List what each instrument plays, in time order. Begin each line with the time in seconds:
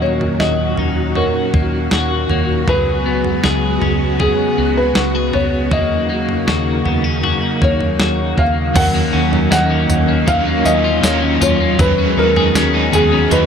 Already playing: fingered electric bass D#2, string machine A#2 D#3 F#3 C#4 F#4, clean electric guitar F#3 D#4 F#4
0.02 clean electric guitar A#3, felt piano C#5
0.21 floor tom
0.39 fingered electric bass D#2, clean electric guitar F#4, celesta C#5, felt piano D#5, snare
0.77 fingered electric bass D#2, clean electric guitar D#4, floor tom
1.15 clean electric guitar F#4, felt piano A#4, celesta C#5, floor tom
1.54 fingered electric bass D#2, clean electric guitar A#3, kick
1.91 fingered electric bass D#2, clean electric guitar F#4, snare
2.29 fingered electric bass D#2, clean electric guitar A#3, floor tom
2.67 fingered electric bass C#2, string machine C#3 F#3 G#3 B3, clean electric guitar F#3 G#4, felt piano B4, kick, floor tom
3.06 clean electric guitar B3
3.24 floor tom
3.44 fingered electric bass C#2, clean electric guitar G#4, snare
3.82 fingered electric bass C#2, clean electric guitar C#4, floor tom
4.20 clean electric guitar G#4, felt piano G#4, kick, floor tom
4.58 fingered electric bass C#2, clean electric guitar B3
4.77 felt piano B4
4.95 fingered electric bass C#2, clean electric guitar F#4, snare
5.15 clean electric guitar G#4
5.33 fingered electric bass C#2, clean electric guitar B3, felt piano C#5, floor tom
5.71 fingered electric bass D#2, string machine F#3 A#3 D#4, clean electric guitar A#3 F#4, felt piano D#5, kick, floor tom
6.09 clean electric guitar A#3
6.29 floor tom
6.47 fingered electric bass D#2, clean electric guitar F#4, celesta G#4, snare
6.85 fingered electric bass D#2, clean electric guitar B3, floor tom
7.04 clean electric guitar C#4
7.23 clean electric guitar F#4, floor tom
7.61 fingered electric bass D#2, clean electric guitar A#3, felt piano C#5, kick
7.81 floor tom
7.99 fingered electric bass D#2, clean electric guitar F#4, snare
8.37 fingered electric bass D#2, clean electric guitar A#3, felt piano F5, kick
8.74 fingered electric bass D#2, overdriven electric guitar D#3 F#3, string machine D#3 F#3 A#3 C#4 D#4, clean electric guitar F#3, celesta A#4, felt piano F#5, kick, floor tom, crash, tambourine
8.78 overdriven electric guitar C#4
8.94 clean electric guitar A#3
9.13 fingered electric bass D#2, clean electric guitar C#4
9.33 floor tom
9.51 fingered electric bass D#2, clean electric guitar A#3, celesta D#5, felt piano F#5, snare, tambourine
9.70 clean electric guitar C#4
9.89 fingered electric bass D#2, floor tom, tambourine
10.08 clean electric guitar A#3
10.26 fingered electric bass D#2, overdriven electric guitar D#3 F#3 C#4, clean electric guitar F#3, felt piano F5, kick, floor tom, tambourine
10.30 overdriven electric guitar F4
10.46 clean electric guitar A#3
10.65 fingered electric bass D#2, clean electric guitar C#4, felt piano D#5, tambourine
10.84 clean electric guitar F4
11.02 fingered electric bass D#2, overdriven electric guitar D#3 F#3 C#4, clean electric guitar A#3, celesta C#5, snare, tambourine
11.06 overdriven electric guitar F4
11.22 clean electric guitar C#4
11.41 fingered electric bass D#2, clean electric guitar F4, felt piano C#5, floor tom, tambourine
11.60 clean electric guitar A#3
11.78 fingered electric bass D#2, overdriven electric guitar D#3 F#3 C#4 D#4 G#4, clean electric guitar F#3, string machine G#3 B3 C#4 F#4, felt piano B4, kick, floor tom, tambourine
11.98 clean electric guitar C#4
12.17 fingered electric bass D#2, clean electric guitar D#4, felt piano A#4
12.36 clean electric guitar G#4, floor tom
12.54 fingered electric bass D#2, overdriven electric guitar F#3 C#4 D#4, clean electric guitar C#4, snare, tambourine
12.58 overdriven electric guitar G#4
12.74 clean electric guitar D#4
12.93 fingered electric bass D#2, clean electric guitar G#4, felt piano G#4, floor tom, tambourine
13.12 clean electric guitar C#4
13.30 fingered electric bass D#2, overdriven electric guitar F#3 C#4 D#4, clean electric guitar F#3, felt piano B4, celesta D#5, floor tom, tambourine
13.34 overdriven electric guitar G#4